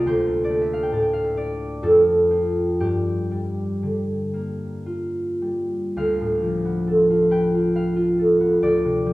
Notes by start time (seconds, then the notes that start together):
Already playing: C2 C3 A#3 D#4 F4 G4 D5
0.06 D2 C5
0.44 D5
0.50 A3
0.62 E5
0.73 F5
0.83 G5
0.92 A2 A5
1.02 G5
1.13 F5
1.24 E5
1.37 D4 D5
1.83 F2 A4
2.31 C4 F4
2.80 G2 G4
3.31 G3
3.83 D3
4.34 A#3
4.86 F4
5.42 G3
5.97 D2 F5
6.21 A2
6.42 F3
6.65 B3
6.87 A4
7.10 F4
7.31 B4 G5
7.54 F4
7.75 B4 F5
7.96 F4
8.19 A4
8.40 B3
8.62 D2 D5
8.85 C3
9.06 F3